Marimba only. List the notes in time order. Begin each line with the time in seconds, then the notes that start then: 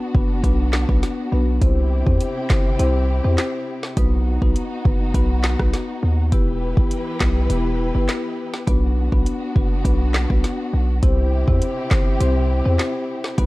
0.14 B3 D4 F#4 B4
0.44 B3 D4 F#4 B4
0.89 B3 D4 F#4 B4
1.32 B3 D4 F#4 B4
1.61 C4 E4 G4 C5
2.06 C4 E4 G4 C5
2.50 C4 E4 G4 C5
2.79 C4 E4 G4 C5
3.24 C4 E4 G4 C5
3.97 B3 D#4 F#4 B4
4.42 B3 D#4 F#4 B4
4.85 B3 D#4 F#4 B4
5.14 B3 D#4 F#4 B4
5.59 B3 D#4 F#4 B4
6.32 B3 E4 G4 B4
6.77 B3 E4 G4 B4
7.20 B3 E4 G4 B4
7.49 B3 E4 G4 B4
7.95 B3 E4 G4 B4
8.67 B3 D4 F#4 B4
9.12 B3 D4 F#4 B4
9.56 B3 D4 F#4 B4
9.85 B3 D4 F#4 B4
10.30 B3 D4 F#4 B4
11.03 C4 E4 G4 C5
11.47 C4 E4 G4 C5
11.91 C4 E4 G4 C5
12.21 C4 E4 G4 C5
12.65 C4 E4 G4 C5
13.38 B3 D#4 F#4 B4